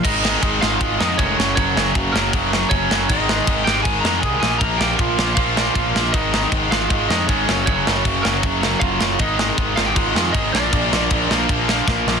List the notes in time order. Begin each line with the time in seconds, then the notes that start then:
0.03 G#1 G#2 D#3 G#3 D#4 D#5, kick, crash
0.23 G#2 D#3 G#3, snare
0.42 G#1 G#2 D#3 G#3, kick, crash
0.61 G#1 G#2 D#3 G#3 F4 F5, snare
0.81 G#1 G#2 D#3 G#3, kick, crash
0.99 F2 G#2 D#3 G#3 D#4 D#5, snare
1.18 F1 G#2 D#3 G#3 C#4 C#5, kick, crash
1.38 F#1 F#2 C#3 F#3, snare
1.55 F#1 F#2 C#3 F#3 C#4 C#5, kick, crash
1.76 F#1 F#2 C#3 F#3, snare
1.95 F#1 F#2 C#3 F#3, kick, crash
2.12 F#1 F#2 C#3 F#3 A#3 A#4, snare
2.33 F#1 F#2 C#3 F#3, kick, crash
2.52 F#2 C#3 F#3, snare
2.70 F#1 F#2 C#3 F#3 C#4 C#5, kick, crash
2.91 F#1 F#2 C#3 F#3, snare
3.09 G#1 G#2 D#3 G#3 D#4 D#5, kick, crash
3.29 G#2 D#3 G#3, snare
3.47 G#1 G#2 D#3 G#3, kick, crash
3.64 G#1 G#2 G4 G5, snare
3.69 D#3 G#3
3.83 G#1 G#2 D#3 G#4 G#5, kick, crash
3.88 G#3
4.00 F2 A#4 A#5
4.05 G#2 D#3 G#3, snare
4.20 C2 G#4 G#5, kick, crash
4.24 G#2 D#3 G#3
4.40 A#1 A#2 G#4 G#5, snare
4.44 F3 A#3
4.58 A#1 A#4 A#5, kick, crash
4.62 A#2 F3 A#3
4.78 A#1 A#2 F3 G4 G5, snare
4.82 A#3
4.96 A#1 A#2 F4 F5, kick, crash
5.00 F3 A#3
5.18 A#1 A#2 F3 A#3, snare
5.35 A#1 A#2 F3 A#3 F4 F5, kick, crash
5.57 A#2 F3 A#3, snare
5.75 A#1 A#2 F3 A#3 F4 F5, kick, crash
5.95 A#1 A#2 F3 A#3, snare
6.12 G#1 G#2 D#3 G#3 D#4 D#5, kick, crash
6.32 G#2 D#3 G#3, snare
6.52 G#1 G#2 D#3 G#3, kick, crash
6.71 G#1 G#2 D#3 G#3 F4 F5, snare
6.90 G#1 G#2 D#3 G#3, kick, crash
7.08 F2 G#2 D#3 G#3 D#4 D#5, snare
7.27 G#1 G#2 D#3 G#3 C#4 C#5, kick, crash
7.47 F#1 F#2 C#3 F#3, snare
7.66 F#1 F#2 C#3 F#3 C#4 C#5, kick, crash
7.86 F#1 F#2 C#3 F#3, snare
8.05 F#1 F#2 C#3 F#3, kick, crash
8.23 F#1 F#2 C#3 F#3 A#3 A#4, snare
8.43 F#1 F#2 C#3 F#3, kick, crash
8.63 F#2 C#3 F#3, snare
8.80 F#1 F#2 C#3 F#3 F4 F5, kick, crash
9.00 F#1 F#2 C#3 F#3, snare
9.19 G#1 G#2 D#3 G#3 D#4 D#5, kick, crash
9.39 G#2 D#3 G#3, snare
9.58 G#1 G#2 D#3 G#3, kick, crash
9.76 G#1 G#2 D#3 G#3 F4 F5, snare
9.86 G4 G5
9.95 G#1 G#2 D#3 G#3 F4 F5, kick, crash
10.15 F2 G#2 D#3 G#3, snare
10.33 G#1 G#2 D#3 G#3 D#4 D#5, kick, crash
10.53 A#1 A#2 F3 A#3 D4 D5, snare
10.72 A#1 A#2 F3 A#3, kick, crash
10.92 A#1 A#2 F3 A#3, snare
11.10 A#1 A#2 F3 A#3, kick, crash
11.30 A#1 A#2 F3 A#3, snare
11.42 C5
11.49 A#1 A#2 F3 A#3, kick, crash
11.69 A#2 F3 A#3, snare
11.87 A#1 A#2 F3 A#3, kick, snare
12.07 A#1 A#2 F3 A#3, snare